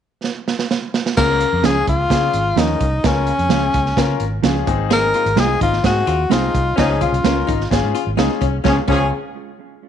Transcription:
0.24 snare
0.48 snare
0.59 snare
0.71 snare
0.94 snare
1.06 snare
1.17 C#2 C#3 C#4 F4 G#4 A#4, kick, snare, crash
1.41 closed hi-hat
1.53 F2
1.63 C#2 F3 C#4 F4 G#4, snare, closed hi-hat
1.87 C#2 F4, kick, closed hi-hat
2.10 C#3 C#4 F4 G#4, kick, snare, closed hi-hat
2.34 G#1, closed hi-hat
2.56 D#2 F3 C#4 D#4 F4 G#4 A#4, snare, closed hi-hat
2.80 C2, kick, closed hi-hat
3.04 C#2 C#3 C#4 F4 A#4, kick, snare, closed hi-hat
3.27 closed hi-hat
3.39 F2, closed hi-hat
3.49 C#2 F3 C#4 F4 G#4, snare, closed hi-hat
3.74 C#2, kick, closed hi-hat
3.86 snare
3.96 C#3 C#4 F4 A#4, kick, snare, closed hi-hat
4.20 G#1, closed hi-hat
4.43 C#2 F3 C#4 F4 G#4, snare, closed hi-hat
4.67 G#1 G#2 C4 D#4 G#4, kick, closed hi-hat
4.90 G#4 A#4, snare, closed hi-hat
5.14 F4, closed hi-hat
5.26 G#1, closed hi-hat
5.36 C2 G#3 C4 D#4 F4 G#4, snare, closed hi-hat
5.61 G#1 D#4 F4, kick, closed hi-hat
5.73 snare
5.83 G#2 C4 D#4 F#4 G#4, kick, snare, closed hi-hat
6.07 D#2 F4, closed hi-hat
6.30 C2 G#3 C4 D#4 F4 G#4, snare, closed hi-hat
6.54 C2, kick, closed hi-hat
6.76 C#2 C#3 F3 C#4 D#4 F4 G#4, kick, snare, closed hi-hat
7.01 F4, kick, closed hi-hat
7.12 C2, closed hi-hat
7.24 C#2 G#3 C#4 F4 G#4 A#4, snare, closed hi-hat
7.47 G#1 D#4, kick, closed hi-hat
7.61 snare
7.71 G#1 C#4 F4 G#4, kick, snare, closed hi-hat
7.83 G#2
7.95 F4, closed hi-hat
8.07 G#1
8.17 C#2 G#3 C#4 D#4 F4 G#4, snare, closed hi-hat
8.41 C2 C#4, kick, closed hi-hat
8.64 C#2 F3 G#3 C#4 F4 G#4, kick, snare
8.87 C#2 F3 G#3 C#4 F4 G#4, kick, crash

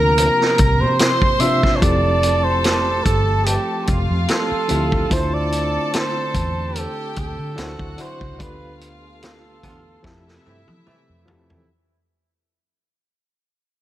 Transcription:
Already playing: D2 C3 F3 A#3 C4 D4 F4 G4 A#4 A#5
0.18 closed hi-hat
0.41 snare
0.58 C2, kick, closed hi-hat
0.81 C3 C5
0.99 C5 C6, snare, closed hi-hat
1.22 kick
1.39 C3 C4 D4 F4 C5 E5, closed hi-hat
1.63 kick, snare
1.76 C#5
1.81 F1 F3 A3 C4 E4 G4 A4 D5 A5, kick, closed hi-hat
2.23 A5, closed hi-hat
2.44 C5
2.51 C6
2.64 snare, closed hi-hat
2.74 D6
3.04 G1 A4, kick, closed hi-hat
3.45 G4, closed hi-hat
3.87 F1 F4 F5, kick, closed hi-hat
4.10 F2
4.28 A4, snare, closed hi-hat
4.52 muted fingered electric bass stroke
4.68 D2 F3 C4 E4 G4 A4, closed hi-hat
4.92 kick
5.10 D2 D3 C4 D4 E4 F4 A4 C5 A5, kick, closed hi-hat
5.34 D5
5.52 closed hi-hat
5.93 C5, snare, closed hi-hat
6.34 E2, kick, closed hi-hat
6.75 G4 A4 G5, closed hi-hat
7.16 D2 A4, kick, closed hi-hat
7.39 D3
7.56 D2 D3 F#3 D4 E4 F#4 C5 F#5, snare, closed hi-hat
7.79 D2, kick
7.97 D3 D4 E4 F#4 C5, closed hi-hat
8.21 C#2, kick
8.38 D2 D3 A3 B3 D4 F4 G4 A4 B4 F5, kick, closed hi-hat
8.81 closed hi-hat
9.04 A4
9.23 snare, closed hi-hat
9.63 E2 D3 F3 B3 F4, kick, closed hi-hat
10.02 F2 C3 F3 A3 C4 E4 G4 E5, kick, snare
10.06 A4
10.28 snare
10.46 G2 C3 E3 A3 E4
10.68 F3, high tom
10.86 C3 E3 A3 E4, muted fingered electric bass stroke, mid tom
11.10 F2
11.26 F3 C4 E4 G4 A4, floor tom
11.50 E2, floor tom

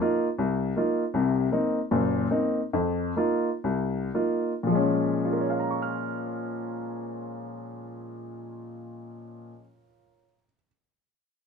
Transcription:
0.01 A#3 D#4 F4
0.39 C2
0.76 A#3 D#4 F4
1.14 C2 C3
1.52 A#3 C4 D#4
1.91 F#1 A#2
2.31 A#3 C4 D#4
2.73 F2
3.17 A#3 D#4 F4
3.64 C2
4.14 A#3 D#4 F4
4.63 A#2 F3
4.71 G#3 C#4
5.25 F4
5.33 A#4
5.41 C#5
5.50 F5
5.60 A#5
5.71 C#6
5.82 F6

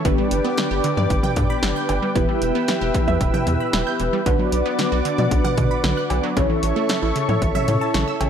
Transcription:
0.05 G1 D3 B3 D4 G4 B4 D5 G5 D6, kick, closed hi-hat
0.18 G3
0.31 G1, closed hi-hat
0.45 B3
0.58 D3, snare, closed hi-hat
0.71 G1 G4
0.84 D3, closed hi-hat
0.97 G2 D5, mid tom
1.10 G1, kick, closed hi-hat
1.23 G5, mid tom
1.36 G2 D3, kick, closed hi-hat, mid tom
1.50 B5
1.63 G1 D3, snare, closed hi-hat
1.76 G6
1.89 G1 D3, closed hi-hat, cowbell
2.02 G3
2.15 E1 E3 B3 E4 G4 B4 E5 E6, kick, closed hi-hat
2.29 G3
2.42 E1, closed hi-hat
2.55 B3
2.68 E3, snare, closed hi-hat
2.81 E1 G4
2.94 E3, kick, closed hi-hat
3.08 E2 E5, mid tom
3.21 E1, kick, closed hi-hat
3.34 G5, mid tom
3.47 E2 E3, closed hi-hat, mid tom
3.60 B5
3.73 E1 E3, snare, closed hi-hat
3.87 G6
4.00 E1 E3, closed hi-hat
4.13 G3
4.26 B1 D3 B3 D4 F#4 B4 D5 F#5 D6, kick, closed hi-hat
4.39 F#3
4.52 B1, closed hi-hat
4.66 B3
4.79 D3, snare, closed hi-hat
4.92 B1 F#4
5.05 D3, closed hi-hat
5.18 B2 D5, mid tom
5.31 B1, kick, closed hi-hat
5.44 F#5, mid tom
5.58 B2 D3, kick, closed hi-hat, mid tom
5.71 B5
5.84 B1 D3, snare, closed hi-hat
5.97 F#6
6.10 B1 D3, closed hi-hat, cowbell
6.23 F#3
6.37 A1 C#3 C#4 E4 A4 C#5 E5 C#6, kick, closed hi-hat
6.50 E3
6.63 A1, closed hi-hat
6.76 A3
6.89 C#3, snare, closed hi-hat
7.02 A1 E4
7.16 C#3, closed hi-hat
7.29 A2 C#5, mid tom
7.42 A1, kick, closed hi-hat
7.55 E5, mid tom
7.68 A2 C#3, closed hi-hat, mid tom
7.81 A5
7.94 A1 C#3, snare, closed hi-hat
8.08 E6
8.21 A1 C#3, closed hi-hat, cowbell

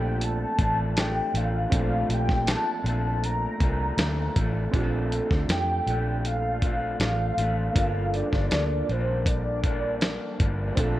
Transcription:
Already playing: A#1 A#2 F3 A3 C4 D4 F4 A4 G5
0.21 A5, closed hi-hat
0.58 A1 F3 A3 D4, kick, closed hi-hat
0.97 F3 A3 D4 G5, snare, closed hi-hat
1.34 A1 F3 A3 D4 F5, closed hi-hat
1.70 A#1 A#2 F3 A3 C4 D4 F4, kick, closed hi-hat
1.75 A3 F5
2.09 A#1, closed hi-hat
2.13 G5
2.29 kick, snare
2.47 A#2 F3 A3 D4, snare, closed hi-hat
2.51 A5
2.84 A#1 A#2 F3 A3 D4, closed hi-hat
3.24 A#5, closed hi-hat
3.60 C2 A#2 F3 A3 D4, kick, closed hi-hat
3.97 D2 A#2 F3 A3 D4, snare, closed hi-hat
4.36 A1 F3 A3 D4, kick, closed hi-hat
4.72 A#1 A#2 F3 A3 C4 D4 F4, kick, closed hi-hat
4.76 G4
4.83 A4
5.12 closed hi-hat
5.30 D2 F3 A3 D4, kick, snare
5.49 F2 G5, snare, closed hi-hat
5.86 A#1 A#2 F3 A3 D4, closed hi-hat
6.25 F5, closed hi-hat
6.62 F3 A3 D4, kick, closed hi-hat
7.00 A1 F5, snare, closed hi-hat
7.37 A1 F3 A3 D4, closed hi-hat
7.73 G1 G2 F3 A#3 D4 F4, kick, closed hi-hat
7.78 A4 F5
8.14 D5, closed hi-hat
8.32 G1 F3 A#3 D4, kick, snare
8.51 D2 D5, snare, closed hi-hat
8.88 A#1 G2 F3 A#3 D4 C5, closed hi-hat
9.26 D5, kick, closed hi-hat
9.64 G2 F3 A#3 D4, kick, closed hi-hat
10.01 snare, closed hi-hat
10.39 G1 G2 F3 A#3 D4, kick, closed hi-hat
10.75 A#1 A#2 F3 A3 C4 D4 F4, kick, closed hi-hat
10.80 A4

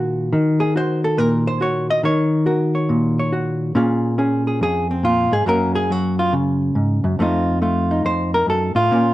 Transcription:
Already playing: A#2 D#3 F#4 A#4
0.33 D#3
0.60 G#4
0.76 F#4 C5
1.04 A4
1.18 A#2 A#4
1.47 C5
1.61 F#4 C#5
1.90 D#5
2.03 D#3 C#5
2.46 F#4 A#4
2.75 C#5
2.89 A#2
3.19 C#5
3.33 F#4
3.75 A#2 C#4 F4 G#4
4.18 C#4 G#4
4.47 G#4
4.61 F2 G#4
4.91 C4
5.03 A#2 F4
5.31 G#2 G#4
5.46 F#2 F#3 A#3 C#4 A#4
5.75 G#4
5.90 F#3 F#4
6.19 F4
6.33 C#3 E4
6.75 G#2
7.04 F#2
7.19 F2 A3 C4 D#4 F4
7.62 A3 F4
7.91 D#4
8.05 F2 C5
8.34 A#4
8.47 F#2 A4
8.75 A2 F4
8.91 A#2 A#3 C#4

